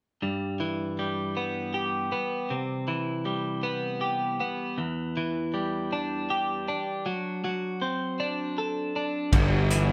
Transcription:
0, 0, Header, 1, 4, 480
1, 0, Start_track
1, 0, Key_signature, 1, "major"
1, 0, Tempo, 759494
1, 138, Time_signature, 6, 3, 24, 8
1, 6271, End_track
2, 0, Start_track
2, 0, Title_t, "Clean electric guitar"
2, 0, Program_c, 0, 27
2, 142, Note_on_c, 0, 43, 40
2, 380, Note_on_c, 0, 52, 38
2, 625, Note_on_c, 0, 55, 30
2, 864, Note_on_c, 0, 59, 38
2, 1101, Note_on_c, 0, 67, 38
2, 1338, Note_off_c, 0, 59, 0
2, 1340, Note_off_c, 0, 43, 0
2, 1340, Note_on_c, 0, 59, 37
2, 1583, Note_on_c, 0, 48, 43
2, 1602, Note_off_c, 0, 59, 0
2, 1816, Note_off_c, 0, 52, 0
2, 1819, Note_on_c, 0, 52, 41
2, 2054, Note_off_c, 0, 55, 0
2, 2056, Note_on_c, 0, 55, 33
2, 2296, Note_on_c, 0, 59, 43
2, 2532, Note_off_c, 0, 67, 0
2, 2534, Note_on_c, 0, 67, 39
2, 2776, Note_off_c, 0, 59, 0
2, 2781, Note_off_c, 0, 48, 0
2, 2783, Note_on_c, 0, 59, 43
2, 3017, Note_off_c, 0, 67, 0
2, 3018, Note_off_c, 0, 55, 0
2, 3019, Note_off_c, 0, 52, 0
2, 3020, Note_on_c, 0, 40, 46
2, 3021, Note_off_c, 0, 59, 0
2, 3267, Note_on_c, 0, 52, 40
2, 3500, Note_on_c, 0, 55, 35
2, 3745, Note_on_c, 0, 62, 46
2, 3984, Note_on_c, 0, 67, 45
2, 4220, Note_off_c, 0, 40, 0
2, 4222, Note_off_c, 0, 62, 0
2, 4224, Note_on_c, 0, 62, 41
2, 4459, Note_off_c, 0, 52, 0
2, 4460, Note_off_c, 0, 55, 0
2, 4461, Note_on_c, 0, 54, 47
2, 4462, Note_off_c, 0, 67, 0
2, 4697, Note_off_c, 0, 54, 0
2, 4704, Note_on_c, 0, 54, 41
2, 4940, Note_on_c, 0, 60, 40
2, 4959, Note_off_c, 0, 62, 0
2, 5182, Note_on_c, 0, 62, 45
2, 5424, Note_on_c, 0, 69, 41
2, 5656, Note_off_c, 0, 62, 0
2, 5663, Note_on_c, 0, 62, 41
2, 5899, Note_off_c, 0, 60, 0
2, 5900, Note_on_c, 0, 43, 50
2, 5901, Note_off_c, 0, 54, 0
2, 5901, Note_off_c, 0, 62, 0
2, 5901, Note_off_c, 0, 69, 0
2, 6137, Note_on_c, 0, 52, 48
2, 6271, Note_off_c, 0, 43, 0
2, 6271, Note_off_c, 0, 52, 0
2, 6271, End_track
3, 0, Start_track
3, 0, Title_t, "Picked electric bass"
3, 0, Program_c, 1, 34
3, 5894, Note_on_c, 1, 31, 67
3, 6271, Note_off_c, 1, 31, 0
3, 6271, End_track
4, 0, Start_track
4, 0, Title_t, "Drums"
4, 5894, Note_on_c, 9, 36, 72
4, 5894, Note_on_c, 9, 49, 67
4, 5957, Note_off_c, 9, 36, 0
4, 5958, Note_off_c, 9, 49, 0
4, 6134, Note_on_c, 9, 42, 41
4, 6197, Note_off_c, 9, 42, 0
4, 6271, End_track
0, 0, End_of_file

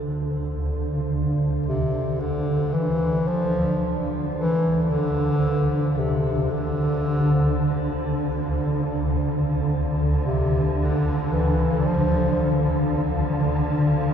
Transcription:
0, 0, Header, 1, 5, 480
1, 0, Start_track
1, 0, Key_signature, -1, "minor"
1, 0, Tempo, 500000
1, 13572, End_track
2, 0, Start_track
2, 0, Title_t, "Ambient pad"
2, 0, Program_c, 0, 92
2, 0, Note_on_c, 0, 69, 73
2, 0, Note_on_c, 0, 72, 79
2, 0, Note_on_c, 0, 74, 75
2, 0, Note_on_c, 0, 77, 69
2, 12405, Note_on_c, 0, 62, 60
2, 12928, Note_on_c, 0, 67, 68
2, 13572, Note_off_c, 0, 62, 0
2, 13572, Note_off_c, 0, 67, 0
2, 13572, Note_off_c, 0, 69, 0
2, 13572, Note_off_c, 0, 72, 0
2, 13572, Note_off_c, 0, 74, 0
2, 13572, Note_off_c, 0, 77, 0
2, 13572, End_track
3, 0, Start_track
3, 0, Title_t, "Singing bowl"
3, 0, Program_c, 1, 14
3, 0, Note_on_c, 1, 69, 52
3, 13572, Note_off_c, 1, 69, 0
3, 13572, End_track
4, 0, Start_track
4, 0, Title_t, "Bass clarinet"
4, 0, Program_c, 2, 71
4, 1596, Note_on_c, 2, 48, 70
4, 2112, Note_on_c, 2, 50, 75
4, 2126, Note_off_c, 2, 48, 0
4, 2628, Note_on_c, 2, 52, 88
4, 2642, Note_off_c, 2, 50, 0
4, 3143, Note_on_c, 2, 53, 87
4, 3158, Note_off_c, 2, 52, 0
4, 3913, Note_off_c, 2, 53, 0
4, 4186, Note_on_c, 2, 52, 89
4, 4625, Note_off_c, 2, 52, 0
4, 4625, Note_on_c, 2, 52, 60
4, 4707, Note_on_c, 2, 50, 90
4, 4721, Note_off_c, 2, 52, 0
4, 5741, Note_on_c, 2, 48, 70
4, 5756, Note_off_c, 2, 50, 0
4, 6247, Note_on_c, 2, 50, 84
4, 6261, Note_off_c, 2, 48, 0
4, 7779, Note_off_c, 2, 50, 0
4, 9832, Note_on_c, 2, 48, 71
4, 10308, Note_off_c, 2, 48, 0
4, 10359, Note_on_c, 2, 50, 79
4, 10874, Note_on_c, 2, 52, 74
4, 10888, Note_off_c, 2, 50, 0
4, 11384, Note_on_c, 2, 53, 85
4, 11399, Note_off_c, 2, 52, 0
4, 12148, Note_off_c, 2, 53, 0
4, 13572, End_track
5, 0, Start_track
5, 0, Title_t, "Synth drone"
5, 0, Program_c, 3, 95
5, 0, Note_on_c, 3, 38, 70
5, 0, Note_on_c, 3, 50, 70
5, 13572, Note_off_c, 3, 38, 0
5, 13572, Note_off_c, 3, 50, 0
5, 13572, End_track
0, 0, End_of_file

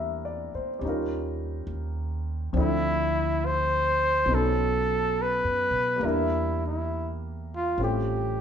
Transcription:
0, 0, Header, 1, 5, 480
1, 0, Start_track
1, 0, Tempo, 864553
1, 1415, Time_signature, 4, 2, 24, 8
1, 1896, Tempo, 875912
1, 4632, End_track
2, 0, Start_track
2, 0, Title_t, "Trumpet"
2, 0, Program_c, 0, 56
2, 1441, Note_on_c, 0, 64, 86
2, 1920, Note_on_c, 0, 72, 85
2, 1929, Note_off_c, 0, 64, 0
2, 2405, Note_on_c, 0, 69, 86
2, 2413, Note_off_c, 0, 72, 0
2, 2885, Note_on_c, 0, 71, 82
2, 2893, Note_off_c, 0, 69, 0
2, 3344, Note_on_c, 0, 64, 73
2, 3352, Note_off_c, 0, 71, 0
2, 3661, Note_off_c, 0, 64, 0
2, 3677, Note_on_c, 0, 64, 61
2, 3929, Note_off_c, 0, 64, 0
2, 4165, Note_on_c, 0, 65, 66
2, 4298, Note_off_c, 0, 65, 0
2, 4317, Note_on_c, 0, 67, 63
2, 4632, Note_off_c, 0, 67, 0
2, 4632, End_track
3, 0, Start_track
3, 0, Title_t, "Grand piano"
3, 0, Program_c, 1, 0
3, 0, Control_c, 1, 64, 127
3, 0, Note_on_c, 1, 55, 48
3, 0, Note_on_c, 1, 58, 42
3, 0, Note_on_c, 1, 62, 43
3, 0, Note_on_c, 1, 64, 37
3, 0, Note_on_c, 1, 70, 54
3, 0, Note_on_c, 1, 76, 35
3, 139, Note_on_c, 1, 74, 40
3, 274, Note_off_c, 1, 76, 0
3, 305, Note_on_c, 1, 72, 40
3, 387, Note_off_c, 1, 74, 0
3, 431, Note_off_c, 1, 55, 0
3, 439, Note_on_c, 1, 55, 40
3, 451, Note_on_c, 1, 61, 34
3, 457, Note_off_c, 1, 58, 0
3, 462, Control_c, 1, 64, 0
3, 463, Note_off_c, 1, 62, 0
3, 465, Note_off_c, 1, 64, 0
3, 467, Note_off_c, 1, 70, 0
3, 471, Note_on_c, 1, 63, 39
3, 485, Note_on_c, 1, 65, 39
3, 494, Note_on_c, 1, 70, 43
3, 550, Note_off_c, 1, 72, 0
3, 572, Control_c, 1, 64, 127
3, 1404, Note_on_c, 1, 53, 45
3, 1407, Note_off_c, 1, 55, 0
3, 1411, Note_on_c, 1, 60, 38
3, 1412, Note_off_c, 1, 61, 0
3, 1422, Note_off_c, 1, 63, 0
3, 1422, Control_c, 1, 64, 0
3, 1422, Note_on_c, 1, 62, 39
3, 1429, Note_off_c, 1, 65, 0
3, 1430, Note_on_c, 1, 64, 37
3, 1433, Note_on_c, 1, 69, 45
3, 1434, Note_off_c, 1, 70, 0
3, 1521, Control_c, 1, 64, 127
3, 2357, Note_on_c, 1, 54, 38
3, 2364, Note_on_c, 1, 59, 38
3, 2370, Note_off_c, 1, 53, 0
3, 2373, Note_off_c, 1, 60, 0
3, 2373, Note_on_c, 1, 61, 34
3, 2377, Note_on_c, 1, 63, 38
3, 2379, Note_off_c, 1, 62, 0
3, 2381, Note_off_c, 1, 69, 0
3, 2382, Control_c, 1, 64, 0
3, 2383, Note_off_c, 1, 64, 0
3, 2389, Note_on_c, 1, 69, 43
3, 2494, Control_c, 1, 64, 127
3, 3291, Note_on_c, 1, 55, 44
3, 3306, Note_on_c, 1, 58, 39
3, 3323, Note_off_c, 1, 54, 0
3, 3326, Note_off_c, 1, 59, 0
3, 3326, Note_on_c, 1, 62, 42
3, 3331, Note_off_c, 1, 61, 0
3, 3333, Note_off_c, 1, 63, 0
3, 3339, Note_off_c, 1, 69, 0
3, 3339, Control_c, 1, 64, 0
3, 3343, Note_on_c, 1, 76, 41
3, 3353, Note_on_c, 1, 70, 55
3, 3445, Control_c, 1, 64, 127
3, 4273, Note_off_c, 1, 55, 0
3, 4281, Note_off_c, 1, 58, 0
3, 4291, Note_off_c, 1, 62, 0
3, 4291, Note_on_c, 1, 55, 35
3, 4297, Note_on_c, 1, 60, 32
3, 4299, Note_off_c, 1, 76, 0
3, 4301, Note_on_c, 1, 61, 31
3, 4302, Control_c, 1, 64, 0
3, 4302, Note_on_c, 1, 65, 34
3, 4304, Note_off_c, 1, 70, 0
3, 4308, Note_on_c, 1, 57, 36
3, 4395, Control_c, 1, 64, 127
3, 4632, Note_off_c, 1, 55, 0
3, 4632, Note_off_c, 1, 57, 0
3, 4632, Note_off_c, 1, 60, 0
3, 4632, Note_off_c, 1, 61, 0
3, 4632, Note_off_c, 1, 65, 0
3, 4632, End_track
4, 0, Start_track
4, 0, Title_t, "Upright bass"
4, 0, Program_c, 2, 32
4, 0, Note_on_c, 2, 40, 69
4, 277, Note_off_c, 2, 40, 0
4, 452, Note_on_c, 2, 39, 64
4, 912, Note_off_c, 2, 39, 0
4, 926, Note_on_c, 2, 39, 65
4, 1388, Note_off_c, 2, 39, 0
4, 1408, Note_on_c, 2, 38, 67
4, 2350, Note_off_c, 2, 38, 0
4, 2358, Note_on_c, 2, 35, 65
4, 2983, Note_off_c, 2, 35, 0
4, 3008, Note_on_c, 2, 42, 44
4, 3149, Note_off_c, 2, 42, 0
4, 3153, Note_on_c, 2, 47, 57
4, 3310, Note_off_c, 2, 47, 0
4, 3317, Note_on_c, 2, 40, 74
4, 4264, Note_off_c, 2, 40, 0
4, 4287, Note_on_c, 2, 33, 68
4, 4632, Note_off_c, 2, 33, 0
4, 4632, End_track
5, 0, Start_track
5, 0, Title_t, "Muted upright bass strokes"
5, 302, Note_on_c, 9, 29, 30
5, 357, Note_off_c, 9, 29, 0
5, 4632, End_track
0, 0, End_of_file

